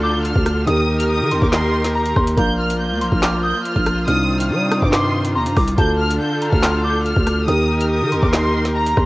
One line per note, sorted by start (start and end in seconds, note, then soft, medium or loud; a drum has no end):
0.00 0.33 D2 loud
0.00 0.63 D3 medium
0.00 0.66 D3 medium
0.00 0.64 D4 medium
0.00 0.66 D4 medium
0.00 0.64 F4 medium
0.00 0.66 F4 medium
0.00 0.64 A4 medium
0.00 0.66 A4 medium
0.00 0.24 D6 medium
0.00 0.22 G6 medium
0.24 0.65 F6 medium
0.24 closed hi-hat medium
0.35 0.66 D2 loud
0.35 kick loud
0.46 cross-stick loud
0.46 closed hi-hat medium
0.66 1.22 D#2 loud
0.66 2.33 D#3 medium
0.66 2.36 D#3 medium
0.66 2.34 D#4 medium
0.66 2.36 D#4 medium
0.66 2.36 G4 medium
0.66 2.34 G4 medium
0.66 2.36 A#4 loud
0.66 2.35 A#4 medium
0.66 1.27 D#6 loud
0.66 0.97 D#6 loud
0.66 closed hi-hat medium
0.99 1.09 F6 medium
0.99 closed hi-hat medium
1.10 1.40 D#6 loud
1.21 1.33 D#3 loud
1.31 1.41 D#2 loud
1.31 1.91 C6 medium
1.31 closed hi-hat medium
1.42 2.13 D#2 loud
1.42 1.51 D6 medium
1.42 kick loud
1.52 1.92 C6 loud
1.52 snare loud
1.52 clap loud
1.52 closed hi-hat medium
1.84 snare medium
1.84 closed hi-hat medium
1.95 2.14 A#5 medium
1.95 2.15 A#5 loud
2.06 closed hi-hat medium
2.16 2.37 D#2 loud
2.16 2.37 C6 medium
2.16 kick loud
2.16 cross-stick medium
2.27 closed hi-hat medium
2.36 2.92 A#1 loud
2.36 4.06 F3 medium
2.36 4.04 A#3 medium
2.36 4.06 A#3 medium
2.36 5.75 F4 medium
2.36 4.04 A#4 medium
2.36 4.05 D5 medium
2.36 4.05 F5 medium
2.36 2.98 A#5 loud
2.36 2.57 G6 loud
2.36 kick loud
2.36 closed hi-hat medium
2.59 2.78 F6 medium
2.70 closed hi-hat medium
2.80 3.10 G6 medium
2.91 3.03 D2 loud
3.01 3.11 A#1 loud
3.01 3.22 C6 medium
3.01 closed hi-hat medium
3.12 3.53 A#1 loud
3.12 3.42 F6 medium
3.12 kick loud
3.23 3.43 D6 medium
3.23 snare loud
3.23 clap loud
3.23 closed hi-hat medium
3.43 3.64 D#6 medium
3.43 3.63 G6 medium
3.65 4.05 F6 medium
3.65 closed hi-hat medium
3.76 4.07 A#1 loud
3.76 kick medium
3.86 cross-stick medium
3.86 closed hi-hat medium
4.07 4.52 C2 loud
4.07 5.74 C3 medium
4.07 5.76 C3 medium
4.07 5.76 D#3 medium
4.07 5.74 C4 medium
4.07 5.76 C4 medium
4.07 5.75 D4 medium
4.07 5.75 D#4 medium
4.07 4.38 D#6 loud
4.07 4.68 F6 loud
4.07 closed hi-hat medium
4.40 4.49 F6 medium
4.40 closed hi-hat medium
4.50 4.81 G3 loud
4.50 4.80 D#6 loud
4.72 4.92 D#6 medium
4.72 cross-stick loud
4.72 closed hi-hat medium
4.82 5.37 G2 loud
4.82 4.92 D6 medium
4.82 kick medium
4.93 5.33 C6 medium
4.93 5.33 D6 medium
4.93 snare loud
4.93 clap loud
4.93 closed hi-hat medium
5.25 closed hi-hat medium
5.35 5.48 D#2 loud
5.35 5.54 A#5 medium
5.35 5.56 C6 medium
5.46 5.56 G2 loud
5.46 closed hi-hat medium
5.56 5.77 C2 loud
5.56 5.77 D6 medium
5.56 kick loud
5.56 cross-stick medium
5.56 open hi-hat medium
5.68 closed hi-hat medium
5.77 6.19 D2 loud
5.77 7.44 D3 medium
5.77 7.46 D3 medium
5.77 7.45 D4 medium
5.77 7.46 D4 medium
5.77 7.46 F4 medium
5.77 7.45 F4 medium
5.77 7.46 A4 loud
5.77 7.45 A4 medium
5.77 6.38 A5 loud
5.77 5.97 G6 loud
5.77 kick loud
5.77 closed hi-hat medium
5.99 6.18 F6 medium
6.10 closed hi-hat medium
6.21 6.51 G6 medium
6.42 6.62 A#5 medium
6.42 closed hi-hat medium
6.52 7.14 D2 loud
6.52 6.82 F6 medium
6.52 kick loud
6.63 6.83 C6 medium
6.63 snare loud
6.63 clap loud
6.63 closed hi-hat medium
6.84 7.04 D6 medium
6.84 7.03 G6 medium
7.05 7.46 F6 medium
7.05 closed hi-hat medium
7.16 7.47 D2 loud
7.16 kick medium
7.27 cross-stick medium
7.27 closed hi-hat medium
7.47 8.03 D#2 loud
7.47 9.06 D#3 medium
7.47 9.06 D#4 medium
7.47 9.06 G4 medium
7.47 9.06 A#4 loud
7.47 9.06 A#4 medium
7.47 8.08 D#6 loud
7.47 7.78 D#6 loud
7.47 closed hi-hat medium
7.80 7.90 F6 medium
7.80 closed hi-hat medium
7.91 8.21 D#6 loud
8.01 8.13 D#3 loud
8.12 8.22 D#2 loud
8.12 8.72 C6 medium
8.12 closed hi-hat medium
8.22 8.94 D#2 loud
8.22 8.32 D6 medium
8.22 kick loud
8.33 8.73 C6 loud
8.33 snare loud
8.33 clap loud
8.33 closed hi-hat medium
8.65 snare medium
8.65 closed hi-hat medium
8.76 8.95 A#5 medium
8.76 8.96 A#5 loud
8.86 closed hi-hat medium
8.97 9.06 D#2 loud
8.97 9.06 C6 medium
8.97 kick loud
8.97 cross-stick medium